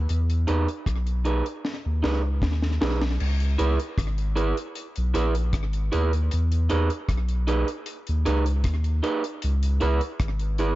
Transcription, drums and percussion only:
0.09 closed hi-hat medium
0.30 closed hi-hat medium
0.48 closed hi-hat medium
0.68 closed hi-hat soft
0.86 kick loud
0.86 cross-stick medium
0.86 closed hi-hat medium
1.07 closed hi-hat soft
1.25 closed hi-hat medium
1.46 closed hi-hat medium
1.65 snare medium
2.04 snare medium
2.42 kick loud
2.42 snare medium
2.62 snare medium
2.82 snare loud
3.02 snare medium
3.20 crash loud
3.40 closed hi-hat medium
3.59 closed hi-hat medium
3.80 closed hi-hat medium
3.98 kick loud
3.98 cross-stick loud
3.98 closed hi-hat medium
4.18 closed hi-hat soft
4.37 closed hi-hat medium
4.57 closed hi-hat medium
4.75 closed hi-hat medium
4.96 closed hi-hat medium
5.15 cross-stick medium
5.15 closed hi-hat medium
5.35 closed hi-hat medium
5.53 kick loud
5.53 cross-stick loud
5.53 closed hi-hat loud
5.73 closed hi-hat soft
5.93 closed hi-hat medium
6.13 closed hi-hat medium
6.31 closed hi-hat medium
6.52 closed hi-hat medium
6.70 closed hi-hat medium
6.90 closed hi-hat medium
7.09 kick loud
7.09 cross-stick medium
7.09 closed hi-hat medium
7.29 closed hi-hat soft
7.48 closed hi-hat medium
7.68 closed hi-hat medium
7.86 closed hi-hat medium
8.07 closed hi-hat medium
8.26 cross-stick medium
8.26 closed hi-hat medium
8.46 closed hi-hat medium
8.64 kick loud
8.64 cross-stick loud
8.64 closed hi-hat loud
8.84 closed hi-hat soft
9.04 closed hi-hat medium
9.24 closed hi-hat medium
9.42 closed hi-hat loud
9.63 closed hi-hat medium
9.81 closed hi-hat medium
10.01 closed hi-hat medium
10.20 kick loud
10.20 cross-stick loud
10.20 closed hi-hat medium
10.39 closed hi-hat soft
10.58 closed hi-hat medium

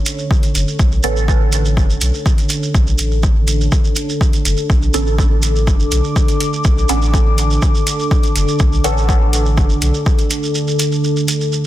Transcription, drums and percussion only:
0.06 closed hi-hat medium
0.06 shekere medium
0.18 shekere soft
0.31 kick loud
0.31 shekere soft
0.43 closed hi-hat soft
0.43 shekere soft
0.55 closed hi-hat medium
0.55 shekere loud
0.68 shekere soft
0.79 kick loud
0.79 shekere medium
0.92 shekere soft
1.03 closed hi-hat medium
1.03 shekere loud
1.16 shekere soft
1.28 kick loud
1.28 shekere medium
1.52 closed hi-hat medium
1.52 shekere medium
1.65 shekere soft
1.77 kick loud
1.77 shekere medium
1.90 shekere soft
2.01 closed hi-hat medium
2.01 shekere medium
2.14 shekere soft
2.26 kick loud
2.26 shekere medium
2.38 closed hi-hat soft
2.38 shekere soft
2.49 closed hi-hat medium
2.49 shekere medium
2.63 shekere soft
2.75 kick loud
2.75 shekere medium
2.87 shekere soft
2.98 closed hi-hat medium
2.98 shekere medium
3.11 shekere soft
3.23 kick loud
3.23 shekere soft
3.48 closed hi-hat medium
3.48 shekere loud
3.61 shekere soft
3.72 kick loud
3.72 shekere medium
3.84 shekere soft
3.96 closed hi-hat medium
3.96 shekere loud
4.09 shekere soft
4.21 kick loud
4.21 shekere soft
4.33 closed hi-hat soft
4.33 shekere soft
4.45 closed hi-hat medium
4.45 shekere loud
4.57 shekere soft
4.70 kick loud
4.70 shekere medium
4.82 shekere soft
4.94 closed hi-hat medium
4.94 shekere medium
5.06 shekere soft
5.18 kick loud
5.18 shekere medium
5.42 closed hi-hat medium
5.42 shekere medium
5.56 shekere soft
5.67 kick loud
5.67 shekere medium
5.80 shekere soft
5.92 closed hi-hat medium
5.92 shekere medium
6.04 shekere soft
6.16 kick loud
6.16 shekere medium
6.28 closed hi-hat soft
6.28 shekere soft
6.41 closed hi-hat medium
6.41 shekere medium
6.53 shekere soft
6.64 kick loud
6.64 shekere medium
6.78 shekere soft
6.89 closed hi-hat medium
6.89 shekere medium
7.02 shekere soft
7.14 kick loud
7.14 shekere medium
7.38 closed hi-hat medium
7.38 shekere medium
7.50 shekere soft
7.62 kick loud
7.62 shekere medium
7.75 shekere soft
7.87 closed hi-hat medium
7.87 shekere medium
7.99 shekere soft
8.11 kick loud
8.11 shekere soft
8.23 closed hi-hat soft
8.23 shekere soft
8.36 closed hi-hat medium
8.36 shekere medium
8.48 shekere soft
8.59 kick loud
8.59 shekere soft
8.73 shekere soft
8.84 closed hi-hat medium
8.84 shekere medium
8.97 shekere soft
9.09 kick loud
9.09 shekere soft
9.33 closed hi-hat medium
9.33 shekere medium
9.45 shekere soft
9.57 kick loud
9.57 shekere soft
9.69 shekere soft
9.82 closed hi-hat medium
9.82 shekere medium
9.94 shekere soft
10.06 kick loud
10.06 shekere soft
10.18 closed hi-hat soft
10.18 shekere soft
10.30 closed hi-hat medium
10.30 shekere medium
10.43 shekere soft
10.55 shekere soft
10.68 shekere soft
10.79 closed hi-hat medium
10.79 shekere medium
10.92 shekere soft
11.04 shekere soft
11.16 shekere soft
11.28 closed hi-hat medium
11.28 shekere medium
11.41 shekere soft
11.52 shekere soft

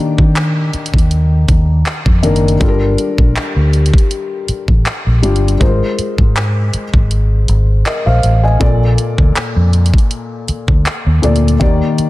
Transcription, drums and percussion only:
0.18 kick medium
0.36 clap loud
0.36 closed hi-hat medium
0.73 closed hi-hat soft
0.86 closed hi-hat medium
0.94 kick medium
0.98 closed hi-hat medium
1.11 closed hi-hat medium
1.48 kick medium
1.48 closed hi-hat medium
1.86 clap loud
1.86 closed hi-hat medium
2.06 kick medium
2.23 closed hi-hat medium
2.36 closed hi-hat medium
2.48 closed hi-hat soft
2.61 kick loud
2.61 closed hi-hat medium
2.98 closed hi-hat medium
3.18 kick medium
3.36 clap loud
3.36 closed hi-hat medium
3.73 closed hi-hat soft
3.86 closed hi-hat medium
3.94 kick medium
3.98 closed hi-hat medium
4.11 closed hi-hat medium
4.48 closed hi-hat medium
4.68 kick loud
4.86 clap loud
4.86 closed hi-hat medium
5.23 closed hi-hat medium
5.36 closed hi-hat medium
5.48 closed hi-hat soft
5.61 kick loud
5.61 closed hi-hat medium
5.99 closed hi-hat medium
6.18 kick medium
6.36 clap loud
6.36 closed hi-hat medium
6.74 closed hi-hat medium
6.94 kick medium
7.11 closed hi-hat medium
7.48 closed hi-hat medium
7.86 clap loud
7.86 closed hi-hat medium
8.23 closed hi-hat medium
8.61 kick loud
8.61 closed hi-hat medium
8.98 closed hi-hat medium
9.18 kick medium
9.36 clap loud
9.36 closed hi-hat medium
9.73 closed hi-hat soft
9.86 closed hi-hat medium
9.94 kick medium
9.98 closed hi-hat medium
10.11 closed hi-hat medium
10.48 closed hi-hat medium
10.68 kick medium
10.86 clap loud
10.86 closed hi-hat medium
11.23 closed hi-hat medium
11.36 closed hi-hat soft
11.48 closed hi-hat soft
11.61 kick loud
11.61 closed hi-hat medium
11.98 closed hi-hat medium

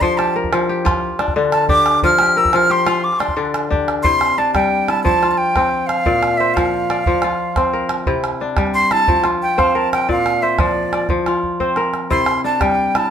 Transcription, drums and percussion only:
0.01 calabash thump medium
0.19 calabash click medium
0.44 calabash thump medium
0.53 calabash click medium
0.86 calabash thump medium
0.86 calabash click medium
1.19 calabash click medium
1.28 calabash thump medium
1.44 calabash click soft
1.52 calabash click medium
1.69 calabash thump medium
1.86 calabash click medium
1.95 calabash click soft
2.03 calabash thump medium
2.11 calabash click soft
2.19 calabash click medium
2.36 calabash click soft
2.45 calabash thump medium
2.45 calabash click soft
2.53 calabash click medium
2.61 calabash click soft
2.87 calabash click medium
2.96 calabash click soft
3.13 calabash click soft
3.20 calabash click medium
3.28 calabash thump medium
3.38 calabash click soft
3.45 calabash click soft
3.54 calabash click medium
3.63 calabash click soft
3.72 calabash thump medium
3.88 calabash click medium
4.04 calabash thump medium
4.21 calabash click medium
4.38 calabash click soft
4.55 calabash thump medium
4.55 calabash click medium
4.64 calabash click soft
4.88 calabash click medium
4.98 calabash click soft
5.06 calabash thump medium
5.23 calabash click medium
5.56 calabash thump medium
5.56 calabash click medium
5.89 calabash click medium
5.97 calabash click soft
6.06 calabash thump medium
6.23 calabash click medium
6.40 calabash click soft
6.57 calabash thump medium
6.57 calabash click medium
6.65 calabash click soft
6.90 calabash click medium
6.99 calabash click soft
7.06 calabash thump medium
7.22 calabash click medium
7.56 calabash thump medium
7.56 calabash click medium
7.89 calabash click medium
7.98 calabash click soft
8.06 calabash thump medium
8.24 calabash click medium
8.41 calabash click soft
8.57 calabash thump medium
8.57 calabash click medium
8.67 calabash click soft
8.91 calabash click medium
9.00 calabash click soft
9.08 calabash thump medium
9.24 calabash click medium
9.59 calabash thump medium
9.59 calabash click medium
9.93 calabash click medium
10.02 calabash click soft
10.09 calabash thump medium
10.09 calabash click soft
10.18 calabash click soft
10.26 calabash click medium
10.43 calabash click soft
10.59 calabash thump medium
10.59 calabash click medium
10.93 calabash click medium
11.09 calabash thump medium
11.09 calabash click soft
11.26 calabash click medium
11.43 calabash thump soft
11.60 calabash thump soft
11.76 calabash click soft
11.94 calabash click soft
12.11 calabash thump medium
12.26 calabash click medium
12.45 calabash click soft
12.61 calabash thump medium
12.61 calabash click medium
12.69 calabash click soft
12.95 calabash click medium
13.04 calabash click soft

